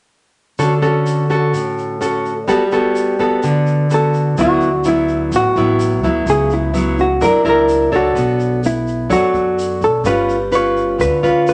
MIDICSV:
0, 0, Header, 1, 5, 480
1, 0, Start_track
1, 0, Key_signature, 2, "major"
1, 0, Tempo, 472813
1, 598, Time_signature, 4, 2, 24, 8
1, 11710, End_track
2, 0, Start_track
2, 0, Title_t, "Hollow-body jazz guitar"
2, 0, Program_c, 0, 26
2, 4002, Note_on_c, 0, 69, 73
2, 4473, Note_off_c, 0, 69, 0
2, 4477, Note_on_c, 0, 66, 78
2, 4953, Note_off_c, 0, 66, 0
2, 4958, Note_on_c, 0, 64, 77
2, 5433, Note_off_c, 0, 64, 0
2, 5439, Note_on_c, 0, 66, 78
2, 6390, Note_off_c, 0, 66, 0
2, 6395, Note_on_c, 0, 68, 93
2, 6625, Note_off_c, 0, 68, 0
2, 6633, Note_on_c, 0, 64, 78
2, 7065, Note_off_c, 0, 64, 0
2, 7114, Note_on_c, 0, 66, 74
2, 7345, Note_off_c, 0, 66, 0
2, 7353, Note_on_c, 0, 70, 88
2, 7584, Note_off_c, 0, 70, 0
2, 7605, Note_on_c, 0, 70, 76
2, 8077, Note_off_c, 0, 70, 0
2, 8078, Note_on_c, 0, 66, 71
2, 8739, Note_off_c, 0, 66, 0
2, 8795, Note_on_c, 0, 64, 74
2, 9225, Note_off_c, 0, 64, 0
2, 9265, Note_on_c, 0, 66, 77
2, 9990, Note_on_c, 0, 69, 76
2, 9993, Note_off_c, 0, 66, 0
2, 10218, Note_off_c, 0, 69, 0
2, 10222, Note_on_c, 0, 71, 97
2, 10704, Note_off_c, 0, 71, 0
2, 10713, Note_on_c, 0, 73, 85
2, 11173, Note_off_c, 0, 73, 0
2, 11177, Note_on_c, 0, 71, 89
2, 11651, Note_off_c, 0, 71, 0
2, 11663, Note_on_c, 0, 71, 83
2, 11710, Note_off_c, 0, 71, 0
2, 11710, End_track
3, 0, Start_track
3, 0, Title_t, "Nylon-string guitar"
3, 0, Program_c, 1, 24
3, 598, Note_on_c, 1, 50, 58
3, 598, Note_on_c, 1, 61, 41
3, 600, Note_on_c, 1, 66, 48
3, 606, Note_on_c, 1, 69, 58
3, 739, Note_off_c, 1, 61, 0
3, 739, Note_off_c, 1, 66, 0
3, 743, Note_off_c, 1, 69, 0
3, 832, Note_on_c, 1, 61, 49
3, 836, Note_on_c, 1, 66, 45
3, 838, Note_on_c, 1, 69, 55
3, 1277, Note_off_c, 1, 61, 0
3, 1279, Note_off_c, 1, 66, 0
3, 1280, Note_off_c, 1, 69, 0
3, 1317, Note_on_c, 1, 61, 56
3, 1323, Note_on_c, 1, 66, 58
3, 1326, Note_on_c, 1, 69, 64
3, 1535, Note_off_c, 1, 50, 0
3, 1557, Note_on_c, 1, 45, 59
3, 2000, Note_off_c, 1, 61, 0
3, 2001, Note_off_c, 1, 66, 0
3, 2004, Note_off_c, 1, 69, 0
3, 2038, Note_on_c, 1, 61, 47
3, 2044, Note_on_c, 1, 66, 48
3, 2047, Note_on_c, 1, 69, 50
3, 2362, Note_off_c, 1, 61, 0
3, 2363, Note_off_c, 1, 66, 0
3, 2366, Note_off_c, 1, 69, 0
3, 2494, Note_off_c, 1, 45, 0
3, 2514, Note_on_c, 1, 55, 64
3, 2518, Note_on_c, 1, 59, 52
3, 2523, Note_on_c, 1, 66, 52
3, 2528, Note_on_c, 1, 69, 52
3, 2661, Note_off_c, 1, 59, 0
3, 2662, Note_off_c, 1, 66, 0
3, 2665, Note_off_c, 1, 69, 0
3, 2764, Note_on_c, 1, 59, 51
3, 2767, Note_on_c, 1, 66, 55
3, 2770, Note_on_c, 1, 69, 59
3, 3204, Note_off_c, 1, 59, 0
3, 3204, Note_off_c, 1, 66, 0
3, 3206, Note_off_c, 1, 69, 0
3, 3242, Note_on_c, 1, 59, 53
3, 3247, Note_on_c, 1, 66, 49
3, 3252, Note_on_c, 1, 69, 61
3, 3453, Note_off_c, 1, 55, 0
3, 3489, Note_on_c, 1, 50, 63
3, 3923, Note_off_c, 1, 59, 0
3, 3925, Note_off_c, 1, 66, 0
3, 3928, Note_off_c, 1, 69, 0
3, 3964, Note_on_c, 1, 59, 44
3, 3971, Note_on_c, 1, 66, 42
3, 3977, Note_on_c, 1, 69, 46
3, 4421, Note_off_c, 1, 50, 0
3, 4423, Note_off_c, 1, 59, 0
3, 4427, Note_off_c, 1, 66, 0
3, 4429, Note_off_c, 1, 69, 0
3, 4445, Note_on_c, 1, 50, 46
3, 4449, Note_on_c, 1, 54, 50
3, 4451, Note_on_c, 1, 59, 50
3, 4456, Note_on_c, 1, 64, 56
3, 4753, Note_off_c, 1, 54, 0
3, 4755, Note_off_c, 1, 59, 0
3, 4758, Note_off_c, 1, 64, 0
3, 4923, Note_on_c, 1, 54, 46
3, 4927, Note_on_c, 1, 59, 47
3, 4932, Note_on_c, 1, 64, 50
3, 5380, Note_off_c, 1, 50, 0
3, 5411, Note_on_c, 1, 45, 49
3, 5604, Note_off_c, 1, 54, 0
3, 5606, Note_off_c, 1, 59, 0
3, 5608, Note_off_c, 1, 64, 0
3, 5649, Note_on_c, 1, 54, 52
3, 5656, Note_on_c, 1, 59, 60
3, 5660, Note_on_c, 1, 64, 64
3, 6087, Note_off_c, 1, 54, 0
3, 6089, Note_off_c, 1, 59, 0
3, 6092, Note_off_c, 1, 64, 0
3, 6126, Note_on_c, 1, 54, 52
3, 6132, Note_on_c, 1, 59, 60
3, 6137, Note_on_c, 1, 64, 63
3, 6342, Note_off_c, 1, 45, 0
3, 6363, Note_on_c, 1, 49, 50
3, 6805, Note_off_c, 1, 54, 0
3, 6808, Note_off_c, 1, 59, 0
3, 6811, Note_off_c, 1, 64, 0
3, 6839, Note_on_c, 1, 54, 44
3, 6843, Note_on_c, 1, 59, 54
3, 6847, Note_on_c, 1, 64, 54
3, 7163, Note_off_c, 1, 54, 0
3, 7165, Note_off_c, 1, 59, 0
3, 7165, Note_off_c, 1, 64, 0
3, 7298, Note_off_c, 1, 49, 0
3, 7321, Note_on_c, 1, 54, 50
3, 7322, Note_on_c, 1, 62, 51
3, 7324, Note_on_c, 1, 64, 48
3, 7332, Note_on_c, 1, 70, 57
3, 7522, Note_off_c, 1, 62, 0
3, 7525, Note_off_c, 1, 64, 0
3, 7527, Note_off_c, 1, 70, 0
3, 7560, Note_on_c, 1, 62, 53
3, 7564, Note_on_c, 1, 64, 57
3, 7570, Note_on_c, 1, 70, 67
3, 8002, Note_off_c, 1, 62, 0
3, 8005, Note_off_c, 1, 64, 0
3, 8006, Note_off_c, 1, 70, 0
3, 8040, Note_on_c, 1, 62, 60
3, 8046, Note_on_c, 1, 69, 55
3, 8048, Note_on_c, 1, 73, 61
3, 8257, Note_off_c, 1, 54, 0
3, 8275, Note_on_c, 1, 59, 51
3, 8722, Note_off_c, 1, 62, 0
3, 8724, Note_off_c, 1, 69, 0
3, 8726, Note_off_c, 1, 73, 0
3, 9214, Note_off_c, 1, 59, 0
3, 9234, Note_on_c, 1, 54, 52
3, 9239, Note_on_c, 1, 62, 55
3, 9242, Note_on_c, 1, 73, 55
3, 9244, Note_on_c, 1, 69, 47
3, 10160, Note_off_c, 1, 62, 0
3, 10160, Note_off_c, 1, 69, 0
3, 10162, Note_off_c, 1, 73, 0
3, 10173, Note_off_c, 1, 54, 0
3, 10202, Note_on_c, 1, 55, 49
3, 10208, Note_on_c, 1, 61, 56
3, 10210, Note_on_c, 1, 65, 46
3, 10215, Note_on_c, 1, 71, 54
3, 10511, Note_off_c, 1, 61, 0
3, 10514, Note_off_c, 1, 65, 0
3, 10515, Note_off_c, 1, 71, 0
3, 10676, Note_on_c, 1, 61, 50
3, 10681, Note_on_c, 1, 65, 48
3, 10684, Note_on_c, 1, 71, 56
3, 11136, Note_off_c, 1, 55, 0
3, 11150, Note_on_c, 1, 50, 49
3, 11358, Note_off_c, 1, 61, 0
3, 11361, Note_off_c, 1, 65, 0
3, 11362, Note_off_c, 1, 71, 0
3, 11399, Note_on_c, 1, 61, 58
3, 11403, Note_on_c, 1, 65, 55
3, 11410, Note_on_c, 1, 71, 61
3, 11710, Note_off_c, 1, 50, 0
3, 11710, Note_off_c, 1, 61, 0
3, 11710, Note_off_c, 1, 65, 0
3, 11710, Note_off_c, 1, 71, 0
3, 11710, End_track
4, 0, Start_track
4, 0, Title_t, "Upright bass"
4, 0, Program_c, 2, 32
4, 4444, Note_on_c, 2, 38, 81
4, 5362, Note_off_c, 2, 38, 0
4, 5397, Note_on_c, 2, 33, 83
4, 5511, Note_off_c, 2, 33, 0
4, 5641, Note_on_c, 2, 33, 74
4, 6121, Note_off_c, 2, 33, 0
4, 6121, Note_on_c, 2, 38, 76
4, 6344, Note_off_c, 2, 38, 0
4, 6356, Note_on_c, 2, 37, 84
4, 7278, Note_off_c, 2, 37, 0
4, 7319, Note_on_c, 2, 42, 83
4, 7432, Note_off_c, 2, 42, 0
4, 7559, Note_on_c, 2, 37, 74
4, 8007, Note_off_c, 2, 37, 0
4, 8042, Note_on_c, 2, 37, 71
4, 8265, Note_off_c, 2, 37, 0
4, 8285, Note_on_c, 2, 35, 78
4, 9202, Note_off_c, 2, 35, 0
4, 9238, Note_on_c, 2, 42, 88
4, 9351, Note_off_c, 2, 42, 0
4, 9478, Note_on_c, 2, 42, 73
4, 9959, Note_on_c, 2, 35, 63
4, 9975, Note_off_c, 2, 42, 0
4, 10183, Note_off_c, 2, 35, 0
4, 10192, Note_on_c, 2, 31, 81
4, 11114, Note_off_c, 2, 31, 0
4, 11163, Note_on_c, 2, 38, 87
4, 11272, Note_off_c, 2, 38, 0
4, 11406, Note_on_c, 2, 38, 74
4, 11710, Note_off_c, 2, 38, 0
4, 11710, End_track
5, 0, Start_track
5, 0, Title_t, "Drums"
5, 597, Note_on_c, 9, 82, 58
5, 699, Note_off_c, 9, 82, 0
5, 836, Note_on_c, 9, 82, 24
5, 938, Note_off_c, 9, 82, 0
5, 1080, Note_on_c, 9, 82, 52
5, 1182, Note_off_c, 9, 82, 0
5, 1320, Note_on_c, 9, 82, 19
5, 1421, Note_off_c, 9, 82, 0
5, 1563, Note_on_c, 9, 82, 59
5, 1665, Note_off_c, 9, 82, 0
5, 1807, Note_on_c, 9, 82, 21
5, 1908, Note_off_c, 9, 82, 0
5, 2047, Note_on_c, 9, 82, 54
5, 2149, Note_off_c, 9, 82, 0
5, 2288, Note_on_c, 9, 82, 22
5, 2390, Note_off_c, 9, 82, 0
5, 2519, Note_on_c, 9, 82, 56
5, 2621, Note_off_c, 9, 82, 0
5, 2757, Note_on_c, 9, 82, 24
5, 2859, Note_off_c, 9, 82, 0
5, 2999, Note_on_c, 9, 82, 56
5, 3101, Note_off_c, 9, 82, 0
5, 3239, Note_on_c, 9, 82, 23
5, 3340, Note_off_c, 9, 82, 0
5, 3481, Note_on_c, 9, 82, 58
5, 3583, Note_off_c, 9, 82, 0
5, 3720, Note_on_c, 9, 82, 23
5, 3822, Note_off_c, 9, 82, 0
5, 3962, Note_on_c, 9, 82, 62
5, 4063, Note_off_c, 9, 82, 0
5, 4198, Note_on_c, 9, 82, 24
5, 4300, Note_off_c, 9, 82, 0
5, 4440, Note_on_c, 9, 82, 56
5, 4542, Note_off_c, 9, 82, 0
5, 4677, Note_on_c, 9, 82, 23
5, 4778, Note_off_c, 9, 82, 0
5, 4915, Note_on_c, 9, 82, 54
5, 5016, Note_off_c, 9, 82, 0
5, 5160, Note_on_c, 9, 82, 22
5, 5261, Note_off_c, 9, 82, 0
5, 5403, Note_on_c, 9, 82, 64
5, 5505, Note_off_c, 9, 82, 0
5, 5644, Note_on_c, 9, 82, 23
5, 5746, Note_off_c, 9, 82, 0
5, 5883, Note_on_c, 9, 82, 60
5, 5985, Note_off_c, 9, 82, 0
5, 6127, Note_on_c, 9, 82, 22
5, 6228, Note_off_c, 9, 82, 0
5, 6362, Note_on_c, 9, 82, 59
5, 6464, Note_off_c, 9, 82, 0
5, 6600, Note_on_c, 9, 82, 25
5, 6702, Note_off_c, 9, 82, 0
5, 6846, Note_on_c, 9, 82, 57
5, 6947, Note_off_c, 9, 82, 0
5, 7089, Note_on_c, 9, 82, 21
5, 7191, Note_off_c, 9, 82, 0
5, 7322, Note_on_c, 9, 82, 60
5, 7424, Note_off_c, 9, 82, 0
5, 7567, Note_on_c, 9, 82, 25
5, 7668, Note_off_c, 9, 82, 0
5, 7804, Note_on_c, 9, 82, 55
5, 7905, Note_off_c, 9, 82, 0
5, 8052, Note_on_c, 9, 82, 21
5, 8153, Note_off_c, 9, 82, 0
5, 8285, Note_on_c, 9, 82, 53
5, 8387, Note_off_c, 9, 82, 0
5, 8525, Note_on_c, 9, 82, 24
5, 8627, Note_off_c, 9, 82, 0
5, 8768, Note_on_c, 9, 82, 56
5, 8869, Note_off_c, 9, 82, 0
5, 9008, Note_on_c, 9, 82, 23
5, 9110, Note_off_c, 9, 82, 0
5, 9245, Note_on_c, 9, 82, 58
5, 9346, Note_off_c, 9, 82, 0
5, 9486, Note_on_c, 9, 82, 24
5, 9587, Note_off_c, 9, 82, 0
5, 9733, Note_on_c, 9, 82, 60
5, 9834, Note_off_c, 9, 82, 0
5, 9967, Note_on_c, 9, 82, 22
5, 10068, Note_off_c, 9, 82, 0
5, 10201, Note_on_c, 9, 82, 57
5, 10303, Note_off_c, 9, 82, 0
5, 10448, Note_on_c, 9, 82, 26
5, 10550, Note_off_c, 9, 82, 0
5, 10684, Note_on_c, 9, 82, 59
5, 10785, Note_off_c, 9, 82, 0
5, 10930, Note_on_c, 9, 82, 21
5, 11031, Note_off_c, 9, 82, 0
5, 11167, Note_on_c, 9, 82, 60
5, 11269, Note_off_c, 9, 82, 0
5, 11407, Note_on_c, 9, 82, 24
5, 11509, Note_off_c, 9, 82, 0
5, 11645, Note_on_c, 9, 82, 57
5, 11710, Note_off_c, 9, 82, 0
5, 11710, End_track
0, 0, End_of_file